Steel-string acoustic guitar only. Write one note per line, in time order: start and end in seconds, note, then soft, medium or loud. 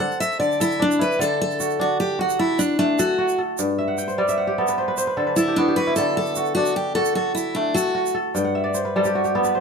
0.00 0.20 F#5 medium
0.20 0.39 E5 medium
0.40 0.58 D5 medium
0.61 0.81 E4 loud
0.82 1.02 D4 medium
1.01 1.21 B4 medium
1.21 1.40 A4 medium
1.41 1.81 A4 medium
1.81 1.99 F#4 medium
2.00 2.20 G4 medium
2.21 2.38 F#4 medium
2.39 2.60 E4 medium
2.59 2.78 D4 medium
2.79 2.99 D4 medium
2.99 3.40 F#4 medium
5.36 5.57 E4 medium
5.56 5.77 D4 medium
5.76 5.95 B4 medium
5.96 6.16 A4 loud
6.17 6.54 A4 medium
6.55 6.76 F#4 medium
6.76 6.95 G4 medium
6.95 7.14 A4 medium
7.15 7.34 F#4 medium
7.35 7.55 E4 medium
7.55 7.75 D4 medium
7.74 8.16 F#4 medium